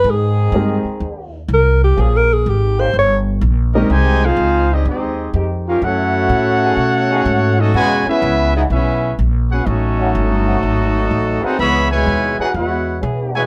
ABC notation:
X:1
M:4/4
L:1/8
Q:"Swing" 1/4=125
K:Ebmix
V:1 name="Trumpet section"
z8 | z6 z [DGBe] | [EGca] [EAcf]2 [CGAe] [CGAe]2 z [DGBf] | [_F=Ad_g]6- [FAdg] [^C^FA^d] |
[^F=B^c^g] [^C^GB=e]2 [=B,=EG_e] [CGB=e]2 z [CGB^f] | [D_G=Ae]6- [DGAe] [EAc_g] | [Ad_f_c'] [_F_cda]2 [EAc_g] [Fcdg]2 z [Fcda] |]
V:2 name="Alto saxophone"
A3 z3 B G | (3A B A G c d z3 | z8 | z8 |
z8 | z8 | z8 |]
V:3 name="Grand piano"
z2 [A,CEGB] z4 z | z6 z [A,CEGB] | z8 | z8 |
z8 | z8 | z8 |]
V:4 name="Trombone section"
[E,A,CA]4- [E,A,CA] z3 | [F,B,DA] z2 [E,B,DG] z4 | z6 [E,A,CG]2 | [_F,=A,D_G]3 [E,A,D_A] z [^D,=A,^C^G] z2 |
[=E,^G,^C^F] z2 [E,G,CF] z4 | z [E,=A,D_G] z [_G,A,CG] z3 [_F,_CD_A]- | [_F,_CDA]2 z [F,CDA] z2 [F,CDA]2 |]
V:5 name="Trombone section"
z8 | z6 z [G,B,E] | [C,E,A,] [A,CF]2 [G,CE] [A,CE]2 z F | [=A,D_G]6- [A,DG] [^F,A,^D] |
[=B,,^C,^G,] [=B,^C=E]2 _E [B,C=E]2 z [B,C^F] | [_G,=A,E]6- [G,A,E] [CE_G] | [_F,A,_C] [_C,F,A,]2 _G [A,CG]2 z [C,F,A,] |]
V:6 name="Upright bass" clef=bass
A,,2 G,, z E,,2 C,,2 | B,,,2 A,,,2 G,,,2 B,,,2 | C,,2 D,,2 E,,2 F,,2 | _G,,2 =A,,2 =B,,2 ^G,,2 |
=E,, z ^C,,2 =B,,,2 _B,,,2 | =A,,,2 G,,,2 _A,,,2 =A,,, z | D,,2 E,, z _F,,2 _C,2 |]